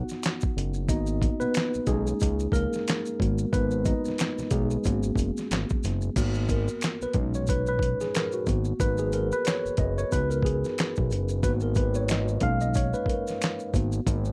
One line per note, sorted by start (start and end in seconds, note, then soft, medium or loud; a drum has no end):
0.00 0.89 B3 medium
0.00 0.90 D#4 soft
0.00 0.90 F#4 medium
0.00 0.51 F#5 medium
0.09 snare soft
0.09 maracas medium
0.23 finger snap medium
0.23 snare loud
0.23 clap medium
0.23 closed hi-hat medium
0.23 maracas medium
0.41 kick medium
0.41 maracas soft
0.57 0.91 F#1 medium
0.57 closed hi-hat medium
0.74 maracas soft
0.89 1.30 G#1 loud
0.89 1.34 A#3 medium
0.89 1.34 B3 medium
0.89 1.37 D#4 medium
0.89 1.35 F#4 medium
0.89 1.37 D#5 loud
0.89 kick loud
0.89 closed hi-hat medium
0.89 maracas medium
1.07 maracas soft
1.22 kick medium
1.22 closed hi-hat medium
1.40 1.47 B1 soft
1.40 1.85 B3 medium
1.40 1.89 B4 medium
1.40 maracas medium
1.54 finger snap medium
1.54 snare loud
1.54 clap medium
1.54 closed hi-hat medium
1.54 maracas medium
1.74 1.80 B1 soft
1.74 maracas soft
1.87 2.14 B1 medium
1.87 2.50 G#3 medium
1.87 2.54 A#3 soft
1.87 2.83 C#4 medium
1.87 2.83 D#4 medium
1.87 2.55 G#4 medium
1.87 kick medium
1.87 closed hi-hat medium
1.87 maracas soft
2.07 maracas soft
2.20 2.48 C#2 medium
2.20 kick medium
2.20 closed hi-hat medium
2.20 maracas medium
2.40 maracas soft
2.52 2.68 C#2 medium
2.52 3.49 A#3 medium
2.52 3.55 A#4 medium
2.52 kick medium
2.52 closed hi-hat medium
2.52 maracas soft
2.73 snare soft
2.73 maracas soft
2.88 finger snap medium
2.88 snare loud
2.88 clap medium
2.88 closed hi-hat medium
2.88 maracas medium
3.06 maracas soft
3.20 3.46 G#1 loud
3.20 4.14 G#3 soft
3.20 3.53 B3 soft
3.20 4.15 F#4 medium
3.20 kick medium
3.20 closed hi-hat medium
3.38 maracas soft
3.53 3.94 G#1 loud
3.53 3.69 B3 medium
3.53 3.67 B4 medium
3.53 kick loud
3.53 closed hi-hat medium
3.53 maracas medium
3.71 maracas soft
3.85 4.48 D#4 medium
3.85 4.53 D#5 medium
3.85 kick medium
3.85 closed hi-hat medium
3.85 maracas medium
4.05 4.11 B1 soft
4.05 snare soft
4.05 maracas medium
4.18 finger snap medium
4.18 snare loud
4.18 clap medium
4.18 closed hi-hat medium
4.18 maracas medium
4.38 4.44 B1 soft
4.38 snare soft
4.38 maracas soft
4.51 4.78 B1 medium
4.51 5.80 G#3 medium
4.51 5.79 G#4 medium
4.51 kick medium
4.51 closed hi-hat medium
4.51 maracas soft
4.71 maracas soft
4.84 5.12 G#1 medium
4.84 6.12 A#3 medium
4.84 6.12 B3 soft
4.84 6.13 C#4 medium
4.84 6.13 F#4 medium
4.84 kick medium
4.84 closed hi-hat medium
4.84 maracas medium
5.03 maracas soft
5.16 5.31 F#1 medium
5.16 kick medium
5.16 closed hi-hat medium
5.16 maracas soft
5.37 snare soft
5.37 maracas medium
5.51 5.66 G#1 loud
5.51 finger snap medium
5.51 snare loud
5.51 clap medium
5.51 closed hi-hat medium
5.51 maracas medium
5.70 kick medium
5.70 maracas soft
5.83 6.10 F#1 loud
5.83 snare soft
5.83 closed hi-hat medium
5.83 maracas soft
6.01 maracas soft
6.16 6.69 G#1 loud
6.16 7.11 A#3 soft
6.16 7.11 B3 soft
6.16 7.12 F#4 medium
6.16 kick loud
6.16 closed hi-hat medium
6.16 crash medium
6.16 maracas medium
6.34 maracas soft
6.49 7.03 A#4 medium
6.49 kick medium
6.49 closed hi-hat medium
6.49 maracas soft
6.68 maracas soft
6.81 finger snap medium
6.81 snare loud
6.81 clap medium
6.81 closed hi-hat medium
6.81 maracas medium
7.02 7.07 B1 soft
7.02 7.17 B4 medium
7.02 maracas soft
7.13 7.96 B1 medium
7.13 8.10 A#2 soft
7.13 8.10 G#3 soft
7.13 8.10 C#4 soft
7.13 8.10 D#4 medium
7.13 kick medium
7.13 closed hi-hat medium
7.34 7.49 C#5 medium
7.34 maracas soft
7.47 7.67 B4 medium
7.47 kick medium
7.47 closed hi-hat medium
7.47 maracas medium
7.67 8.01 B4 medium
7.67 maracas soft
7.79 kick medium
7.79 closed hi-hat medium
8.01 8.15 G#4 medium
8.01 snare soft
8.01 maracas soft
8.15 8.34 A#4 medium
8.15 finger snap medium
8.15 snare loud
8.15 clap medium
8.15 closed hi-hat medium
8.15 maracas medium
8.32 8.47 F#4 medium
8.32 maracas soft
8.46 8.73 G#1 loud
8.46 8.92 A#3 soft
8.46 8.93 B3 soft
8.46 8.93 F#4 medium
8.46 kick medium
8.46 closed hi-hat medium
8.46 maracas soft
8.65 maracas soft
8.80 9.33 G#1 loud
8.80 8.99 B4 medium
8.80 kick loud
8.80 closed hi-hat medium
8.80 maracas medium
8.98 9.05 G#4 medium
8.98 maracas soft
9.12 9.31 A#4 medium
9.12 closed hi-hat medium
9.12 maracas medium
9.32 9.47 B4 medium
9.32 maracas soft
9.45 9.80 C#5 medium
9.45 finger snap medium
9.45 snare loud
9.45 clap medium
9.45 closed hi-hat medium
9.45 maracas medium
9.65 9.71 F#1 soft
9.65 maracas soft
9.77 10.05 F#1 loud
9.77 9.98 D#5 medium
9.77 kick medium
9.77 closed hi-hat medium
9.98 10.12 C#5 medium
9.98 maracas soft
10.11 10.65 C#2 medium
10.11 10.57 B3 medium
10.11 10.57 D#4 soft
10.11 10.58 F#4 medium
10.11 10.29 B4 medium
10.11 kick medium
10.11 closed hi-hat medium
10.11 maracas medium
10.30 10.43 A#4 medium
10.30 maracas soft
10.43 10.75 G#4 medium
10.43 kick medium
10.43 closed hi-hat medium
10.64 snare soft
10.64 maracas soft
10.78 finger snap medium
10.78 snare loud
10.78 clap medium
10.78 closed hi-hat medium
10.78 maracas medium
10.96 11.13 B1 medium
10.96 kick medium
10.96 maracas soft
11.11 11.45 F#1 medium
11.11 closed hi-hat medium
11.11 maracas soft
11.29 maracas soft
11.43 12.38 G#1 loud
11.43 11.89 A#3 medium
11.43 11.89 B3 soft
11.43 11.89 F#4 medium
11.43 11.52 B4 medium
11.43 kick loud
11.43 closed hi-hat medium
11.43 maracas medium
11.60 11.77 A#4 medium
11.60 maracas soft
11.75 11.94 B4 medium
11.75 kick medium
11.75 closed hi-hat medium
11.75 maracas soft
11.95 12.10 C#5 medium
11.95 maracas medium
12.08 12.25 D#5 medium
12.08 finger snap medium
12.08 snare loud
12.08 clap medium
12.08 closed hi-hat medium
12.08 maracas medium
12.28 maracas soft
12.40 12.95 B1 medium
12.40 13.70 G#3 soft
12.40 13.70 A#3 soft
12.40 13.70 C#4 soft
12.40 13.71 D#4 medium
12.40 12.62 F5 medium
12.40 kick medium
12.40 closed hi-hat medium
12.61 12.68 D#5 loud
12.61 maracas soft
12.74 12.95 C#5 medium
12.74 kick medium
12.74 closed hi-hat medium
12.74 maracas medium
12.94 13.09 B4 medium
12.94 maracas soft
13.06 13.39 A#4 medium
13.06 kick medium
13.06 closed hi-hat medium
13.27 snare soft
13.27 maracas soft
13.42 finger snap medium
13.42 snare loud
13.42 clap medium
13.42 closed hi-hat medium
13.42 maracas medium
13.59 maracas soft
13.73 14.01 G#1 loud
13.73 14.19 A#3 soft
13.73 14.20 B3 soft
13.73 14.20 F#4 medium
13.73 kick medium
13.73 closed hi-hat medium
13.73 maracas soft
13.92 maracas soft
14.07 14.32 G#1 loud
14.07 kick loud
14.07 closed hi-hat medium
14.07 maracas medium
14.25 maracas soft